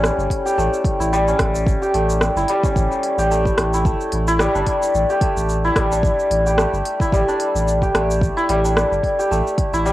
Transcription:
Already playing: A1 G3 A3 C#4 E4 G4
0.04 cross-stick, shaker
0.18 G1, shaker
0.30 kick, open hi-hat
0.45 G4, shaker
0.58 A1 A3, shaker
0.74 shaker
0.85 kick, open hi-hat
1.00 A1 E4, shaker
1.13 G3, shaker
1.28 C#4, shaker
1.39 A1, kick, cross-stick, open hi-hat
1.55 shaker
1.67 kick, shaker
1.82 G4, shaker
1.94 A1 A3, open hi-hat
2.10 shaker
2.21 cross-stick, shaker
2.36 G1 E4, shaker
2.48 G3, open hi-hat
2.63 C#4, kick, shaker
2.76 A1, kick, shaker
2.92 shaker
3.03 open hi-hat
3.18 A1 G4, shaker
3.31 A3, shaker
3.45 kick, shaker
3.58 A1, cross-stick, open hi-hat
3.74 E4, shaker
3.85 A3, kick, shaker
4.01 shaker
4.12 A1, open hi-hat
4.28 E4, shaker
4.39 G3, cross-stick, shaker
4.55 G1 D4, shaker
4.67 kick, open hi-hat
4.83 shaker
4.94 A1, shaker
5.10 G4, shaker
5.21 A3, kick, open hi-hat
5.36 A1, shaker
5.49 shaker
5.64 E4, shaker
5.76 A1 G3, kick, cross-stick, open hi-hat
5.92 D4, shaker
6.03 kick, shaker
6.19 shaker
6.30 A1, open hi-hat
6.46 G4, shaker
6.58 A3, cross-stick, shaker
6.73 G1, shaker
6.85 open hi-hat
7.00 E4, kick, shaker
7.12 A1 G3, kick, shaker
7.28 D4, shaker
7.40 open hi-hat
7.55 A1, shaker
7.68 shaker
7.82 G4, kick, shaker
7.95 A1 A3, cross-stick, open hi-hat
8.10 shaker
8.21 kick, shaker
8.37 E4, shaker
8.49 A1 G3, open hi-hat
8.64 D4, shaker
8.77 cross-stick, shaker
8.91 G1, shaker
9.03 kick, open hi-hat
9.19 G4, shaker
9.31 A1 A3, shaker
9.47 shaker
9.58 kick, open hi-hat
9.73 A1 E4, shaker
9.86 G3, shaker

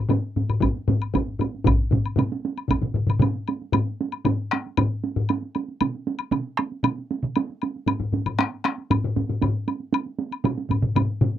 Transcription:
0.09 taiko low-mid, taiko high, high woodblock
0.36 taiko low-mid, taiko high
0.49 taiko low-mid, high woodblock
0.61 taiko, taiko low-mid, taiko high, high woodblock
0.77 taiko high
0.88 taiko low-mid, taiko high
1.02 high woodblock
1.14 taiko, taiko low-mid, taiko high, high woodblock
1.28 taiko high
1.39 taiko low-mid, taiko high, high woodblock
1.54 taiko high
1.64 taiko, taiko low-mid, taiko mid, taiko high, high woodblock
1.81 taiko high
1.91 taiko low-mid, taiko mid, taiko high
2.06 taiko high, high woodblock
2.16 taiko low-mid, taiko mid, taiko high, high woodblock
2.32 taiko high
2.45 taiko high
2.57 taiko high, high woodblock
2.68 taiko, taiko low-mid, taiko mid, taiko high, high woodblock
2.81 taiko low-mid, taiko mid, taiko high
2.94 taiko low-mid, taiko mid
3.07 taiko low-mid, taiko mid, taiko high, high woodblock
3.19 taiko low-mid, taiko mid, taiko high, high woodblock
3.35 taiko high
3.48 taiko high, high woodblock
3.62 taiko high
3.72 taiko low-mid, taiko high, high woodblock
3.87 taiko high
4.01 taiko high
4.12 taiko high, high woodblock
4.25 taiko low-mid, taiko high, high woodblock
4.51 taiko rim, taiko high, high woodblock
4.67 taiko high
4.77 taiko low-mid, taiko high, high woodblock
5.04 taiko high
5.16 taiko low-mid, taiko high
5.29 taiko high, high woodblock
5.42 taiko high
5.55 taiko high, high woodblock
5.68 taiko high
5.81 taiko mid, taiko high, high woodblock
5.95 taiko high
6.07 taiko high
6.19 taiko high, high woodblock
6.31 taiko mid, taiko high, high woodblock
6.57 taiko rim, taiko high, high woodblock
6.72 taiko high
6.83 taiko mid, taiko high, high woodblock
6.98 taiko high
7.11 taiko high
7.23 taiko mid, taiko high
7.36 taiko high, high woodblock
7.50 taiko high
7.62 taiko high, high woodblock
7.76 taiko high
7.86 taiko low-mid, taiko high, high woodblock
8.00 taiko low-mid
8.12 taiko low-mid, taiko high
8.26 taiko low-mid, taiko high, high woodblock
8.39 taiko rim, taiko high, high woodblock
8.64 taiko rim, taiko high, high woodblock
8.78 taiko high
8.90 taiko low-mid, taiko high, high woodblock
9.04 taiko low-mid, taiko high
9.16 taiko low-mid, taiko high
9.29 taiko low-mid, taiko high
9.42 taiko low-mid, taiko high, high woodblock
9.55 taiko high
9.68 taiko high, high woodblock
9.80 taiko high
9.93 taiko high, high woodblock
10.06 taiko high
10.19 taiko high
10.31 taiko high, high woodblock
10.44 taiko low-mid, taiko mid, taiko high, high woodblock
10.58 taiko high
10.70 taiko low-mid, taiko mid, taiko high, high woodblock
10.82 taiko low-mid, taiko mid, taiko high
10.95 taiko low-mid, taiko mid, taiko high, high woodblock
11.10 taiko high
11.21 taiko low-mid, taiko mid, taiko high
11.36 taiko high

